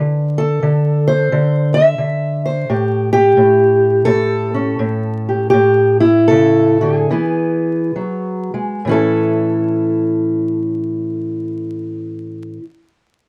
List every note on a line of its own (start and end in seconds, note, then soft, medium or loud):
0.00 0.61 D3 medium
0.38 1.75 A4 medium
0.63 1.31 D3 medium
1.08 1.74 C5 medium
1.32 1.97 D3 medium
1.74 2.43 E5 loud
1.98 2.64 D3 medium
2.46 2.68 C5 medium
2.70 3.36 A2 medium
2.70 3.12 G4 medium
3.13 4.77 G4 loud
3.37 4.05 A2 medium
4.05 4.77 A2 medium
4.05 6.01 A4 loud
4.54 5.49 C#4 medium
4.79 5.49 A2 medium
5.29 5.49 G4 soft
5.50 7.06 A2 medium
5.50 6.00 G4 loud
6.00 6.80 E4 loud
6.28 6.82 C#3 medium
6.28 7.08 A4 loud
6.81 7.09 D3 medium
6.81 8.84 G#4 medium
7.10 7.94 E3 medium
7.10 8.82 B3 medium
7.96 8.53 F#3 medium
8.54 8.85 G#3 medium
8.85 12.57 A2 medium
8.85 12.59 E3 medium
8.89 12.61 C#4 medium
8.89 12.63 E4 medium
8.89 12.59 A4 medium